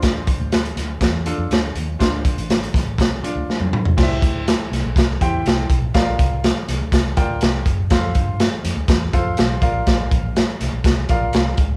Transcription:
<<
  \new Staff \with { instrumentName = "Grand piano" } { \time 4/4 \key c \mixolydian \tempo 4 = 122 <d' f' c''>4 r4. <d' f' a'>4 r8 | <d' f' c''>4. r4 <d' f' d''>4 r8 | <e' g' c'' d'' e''>4. r4 <e' g' c'' g''>4 r8 | <f' bes' d'' f''>4. r4 <f' bes' d'' g''>4 r8 |
<f' a' c'' f''>4. r4 <f' a' c'' f''>4 <f' bes' d'' f''>8~ | <f' bes' d'' f''>4 r4. <f' bes' d'' f''>4 r8 | }
  \new Staff \with { instrumentName = "Fingered electric bass" } { \clef bass \time 4/4 \key c \mixolydian d,8. d,8. d,8 e,8. f,16 d,8 ees,8 | d,8. a,,8. a,,8 c,8 r16 d,16 r16 f,16 d8 | c,8 d,8. r16 c,16 bes,,16 c,8 e,8 c,8 b,,8 | bes,,8 c,8. r16 c,16 d,16 c,8 d,8 c,8 fis,,8 |
f,8 g,8. r16 f,16 d,16 e,8 f,8 b,,8 bes,,8 | bes,,8 bes,,8. r16 c,16 bes,,16 c,8 bes,,8 c,8 des,8 | }
  \new DrumStaff \with { instrumentName = "Drums" } \drummode { \time 4/4 <hh bd sn>8 <hh bd>8 <hh sn>16 hh16 <hh sn>8 <hh bd sn>8 hh8 <hh sn>8 hh8 | <hh bd sn>8 <hh bd>16 hh16 <hh sn>16 hh16 <hh bd sn>8 <hh bd sn>8 hh8 sn16 tommh16 toml16 tomfh16 | <cymc bd sn>8 <hh bd>8 <hh sn>8 <hh sn>8 <hh bd sn>8 <hh bd>8 <hh sn>8 <hh bd>8 | <hh bd sn>8 <hh bd>8 <hh sn>8 <hh sn>8 <hh bd sn>8 <hh bd>8 <hh sn>8 <hh bd>8 |
<hh bd sn>8 <hh bd>8 <hh sn>8 <hh sn>8 <hh bd sn>8 <hh bd>8 <hh sn>8 <hh bd>8 | <hh bd sn>8 <hh bd>8 <hh sn>8 <hh sn>8 <hh bd sn>8 <hh bd>8 <hh sn>8 <hh bd>8 | }
>>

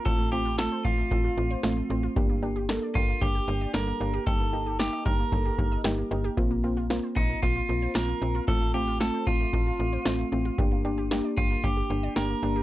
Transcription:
<<
  \new Staff \with { instrumentName = "Clean electric guitar" } { \time 4/4 \key g \minor \tempo 4 = 114 a'8 g'8 a'8 f'2 r8 | r4. f'8 g'4 bes'4 | a'4 g'8 bes'4. r4 | r4. ees'8 f'4 bes'4 |
a'8 g'8 a'8 f'2 r8 | r4. f'8 g'4 bes'4 | }
  \new Staff \with { instrumentName = "Synth arpeggio sound" } { \time 4/4 \key g \minor f16 a16 c'16 f'16 a'16 c''16 f16 a16 r16 f'16 r16 c''16 f16 a16 c'16 f'16 | g16 bes16 d'16 g'16 bes'16 d''16 g16 bes16 r16 g'16 r16 d''16 g16 bes16 d'16 g'16 | g16 bes16 ees'16 g'16 bes'16 ees''16 g16 bes16 r16 g'16 r16 ees''16 g16 bes16 ees'16 g'16 | f16 bes16 c'16 f'16 bes'16 c''16 f16 bes16 r16 f'16 r16 c''16 f16 bes16 c'16 f'16 |
f16 a16 c'16 f'16 a'16 c''16 f16 a16 r16 f'16 r16 c''16 f16 a16 c'16 f'16 | g16 bes16 d'16 g'16 bes'16 d''16 g16 bes16 r16 g'16 r16 d''16 g16 bes16 d'16 g'16 | }
  \new Staff \with { instrumentName = "Synth pluck" } { \time 4/4 \key g \minor <a c' f'>8 <a c' f'>8 <a c' f'>8 <a c' f'>8 <a c' f'>8 <a c' f'>8 <a c' f'>8 <a c' f'>8 | <bes d' g'>8 <bes d' g'>8 <bes d' a'>8 <bes d' bes'>8 <bes d' g'>8 <bes d' g'>8 <bes d' a'>8 <bes d' g'>8 | <bes ees' g'>8 <bes ees' g'>8 <bes ees' g'>8 <bes ees' g'>8 <bes ees' a'>8 <bes ees' g'>8 <bes ees' g'>8 <bes ees' g'>8 | <bes c' f'>8 <bes c' f'>8 <bes c' f'>8 <bes c' f'>8 <bes c' f'>8 <bes c' f'>8 <bes c' f'>8 <bes c' f'>8 |
<a c' f'>8 <a c' f'>8 <a c' f'>8 <a c' f'>8 <a c' f'>8 <a c' f'>8 <a c' f'>8 <a c' f'>8 | <bes d' g'>8 <bes d' g'>8 <bes d' g'>8 <bes d' g'>8 <bes d' g'>8 <bes d' g'>8 <bes d' g'>8 <bes d' g'>8 | }
  \new Staff \with { instrumentName = "FM bass" } { \clef bass \time 4/4 \key g \minor a,,4~ a,,16 r16 a,,8 a,,8 a,,8 a,,8 a,,8 | g,,4~ g,,16 r16 g,,8 g,,8 g,,8 g,,8 g,,8 | g,,4~ g,,16 r16 g,,8 g,,8 g,,8 g,,8 g,,8 | bes,,4~ bes,,16 r16 bes,,8 bes,,8 bes,,8 bes,,8 bes,,8 |
a,,4~ a,,16 r16 a,,8 a,,8 a,,8 a,,8 a,,8 | g,,4~ g,,16 r16 g,,8 g,,8 g,,8 g,,8 g,,8 | }
  \new DrumStaff \with { instrumentName = "Drums" } \drummode { \time 4/4 bd4 sn8 bd8 bd4 sn4 | bd4 sn8 bd8 bd4 sn4 | bd4 sn8 bd8 bd8 bd8 sn4 | bd4 sn8 bd8 bd4 sn4 |
bd4 sn8 bd8 bd4 sn4 | bd4 sn8 bd8 bd4 sn4 | }
>>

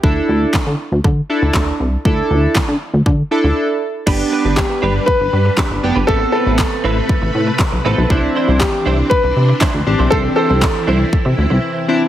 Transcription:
<<
  \new Staff \with { instrumentName = "Grand piano" } { \time 4/4 \key d \mixolydian \tempo 4 = 119 r1 | r1 | r4 g'4 b'4. r8 | a'8 a'2. r8 |
r4 g'4 b'4. r8 | a'8 a'2. r8 | }
  \new Staff \with { instrumentName = "Clean electric guitar" } { \time 4/4 \key d \mixolydian r1 | r1 | <d' g' b'>8 <d' g' b'>16 <d' g' b'>16 r8 <d' g' b'>8 r4 <d' g' b'>8 r16 <d' g' b'>16 | <c' e' b'>8 <c' e' b'>16 <c' e' b'>16 r8 <c' e' b'>8 r4. <c' e' b'>16 <c' e' b'>16 |
<d' e' c''>8 <d' e' c''>16 <d' e' c''>16 r8 <d' e' c''>8 r4 <d' e' c''>8 r16 <d' e' c''>16 | <d' e' c''>8 <d' e' c''>16 <d' e' c''>16 r8 <d' e' c''>8 r2 | }
  \new Staff \with { instrumentName = "Analog polysynth" } { \time 4/4 \key d \mixolydian <d' e' a'>4 r4. <d' e' a'>8 r4 | <d' e' a'>4 r4. <d' e' a'>8 r4 | <b d' g'>4 r2 r8 <b d' g'>16 r16 | <b c' a'>4 r2 r8 <b c' a'>16 r16 |
<c' d' e'>4 r2 r8 <c' d' g'>16 r16 | <c' d' g'>4 r2 r8 <c' d' e'>16 r16 | }
  \new Staff \with { instrumentName = "String machine" } { \time 4/4 \key d \mixolydian << { r1 | r1 | b'1 | b'1 |
d'1 | e'1 | } \\ { r1 | r1 | <g d'>1 | <c a>1 |
<e c'>1~ | <e c'>1 | } >> }
  \new Staff \with { instrumentName = "Analog synth bass" } { \clef bass \time 4/4 \key d \mixolydian d,8 d,8 d16 d16 r16 d,16 d8 r16 d,16 d,8 c,8 | d,8 d,8 d16 d16 r16 d,16 d8 r16 d,16 r4 | g,,8 r16 g,,8 r16 g,,8 r16 g,,16 g,8 r16 g,,16 fis,,16 g,,16 | a,,8 r16 a,,8 r16 a,,8 r16 a,,16 a,8 r16 b,,16 a,,16 b,,16 |
c,8 r16 c,8 r16 c,8 r16 c,16 c8 r16 d,16 a,,16 b,,16 | c,8 r16 c,8 r16 c,8 r16 c16 d,16 c,16 r4 | }
  \new DrumStaff \with { instrumentName = "Drums" } \drummode { \time 4/4 bd4 <hc bd sn>4 bd4 <hc bd sn>4 | bd4 <hc bd sn>4 bd4 r4 | <cymc bd>4 <hc bd sn>4 bd4 <hc bd sn>4 | bd4 <hc bd sn>4 bd4 <hc bd sn>4 |
bd4 <hc bd sn>4 bd4 <hc bd sn>4 | bd4 <hc bd sn>4 bd4 r4 | }
>>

